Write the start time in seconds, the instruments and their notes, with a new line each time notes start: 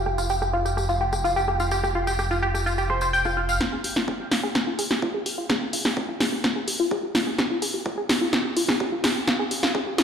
Already playing: detuned saw bass F1
0.06 synth arpeggio sound G4, cross-stick
0.18 synth arpeggio sound F4, tambourine
0.29 synth arpeggio sound G4, tambourine
0.42 synth arpeggio sound G4, cross-stick, tambourine
0.53 synth arpeggio sound F4
0.65 synth arpeggio sound G4, tambourine
0.77 synth arpeggio sound G4, cross-stick, tambourine
0.89 synth arpeggio sound F4, tambourine
1.01 synth arpeggio sound G4
1.13 synth arpeggio sound G4, cross-stick, tambourine
1.24 synth arpeggio sound F4, tambourine
1.36 synth arpeggio sound G4, tambourine
1.48 synth arpeggio sound G4, cross-stick
1.60 synth arpeggio sound F4, tambourine
1.71 synth arpeggio sound G4, tambourine
1.84 synth arpeggio sound G4, cross-stick, tambourine
1.95 synth arpeggio sound F4
2.07 synth arpeggio sound G4, tambourine
2.19 synth arpeggio sound G4, cross-stick, tambourine
2.31 synth arpeggio sound F4, tambourine
2.43 synth arpeggio sound G4
2.54 synth arpeggio sound G4, cross-stick, tambourine
2.66 synth arpeggio sound F4, tambourine
2.78 synth arpeggio sound G4, tambourine
2.90 synth arpeggio sound C5, cross-stick
3.01 synth arpeggio sound C5, tambourine
3.13 synth arpeggio sound G5, tambourine
3.25 synth arpeggio sound F4, cross-stick, tambourine
3.37 synth arpeggio sound F4
3.49 synth arpeggio sound F5, tambourine
3.61 synth arpeggio sound F4, kick, snare
3.73 synth arpeggio sound G#4
3.84 synth arpeggio sound G4, open hi-hat
3.96 synth arpeggio sound F4, snare
4.08 synth arpeggio sound G#4, kick
4.20 synth arpeggio sound G4
4.31 synth arpeggio sound F4, snare, open hi-hat
4.43 synth arpeggio sound G#4
4.55 synth arpeggio sound G4, kick, snare
4.67 synth arpeggio sound F4
4.79 synth arpeggio sound G#4, open hi-hat
4.91 synth arpeggio sound G4, snare
5.02 synth arpeggio sound F4, kick
5.14 synth arpeggio sound G#4
5.26 synth arpeggio sound G4, open hi-hat
5.38 synth arpeggio sound F4
5.50 synth arpeggio sound G#4, kick, snare
5.62 synth arpeggio sound G4
5.73 synth arpeggio sound F4, open hi-hat
5.85 synth arpeggio sound G#4, snare
5.97 synth arpeggio sound G4, kick
6.09 synth arpeggio sound F4
6.20 synth arpeggio sound G#4, snare, open hi-hat
6.32 synth arpeggio sound G4
6.44 synth arpeggio sound F4, kick, snare
6.56 synth arpeggio sound G#4
6.68 synth arpeggio sound G4, open hi-hat
6.80 synth arpeggio sound F4
6.91 synth arpeggio sound G#4, kick
7.03 synth arpeggio sound G4
7.15 synth arpeggio sound F4, snare, open hi-hat
7.27 synth arpeggio sound G#4
7.38 synth arpeggio sound G4, kick, snare
7.50 synth arpeggio sound F4
7.62 synth arpeggio sound G#4, open hi-hat
7.74 synth arpeggio sound G4
7.86 synth arpeggio sound F4, kick
7.98 synth arpeggio sound G#4
8.09 synth arpeggio sound G4, snare, open hi-hat
8.21 synth arpeggio sound F4
8.33 synth arpeggio sound G#4, kick, snare
8.45 synth arpeggio sound G4
8.57 synth arpeggio sound F4, open hi-hat
8.69 synth arpeggio sound G#4, snare
8.80 synth arpeggio sound G4, kick
8.92 synth arpeggio sound F4
9.04 synth arpeggio sound G#4, snare, open hi-hat
9.16 synth arpeggio sound G4
9.27 synth arpeggio sound F4, kick, snare
9.39 synth arpeggio sound G#4
9.51 synth arpeggio sound G4, open hi-hat
9.63 synth arpeggio sound F4, snare
9.75 synth arpeggio sound G#4, kick
9.87 synth arpeggio sound G4
9.98 synth arpeggio sound F4, snare, open hi-hat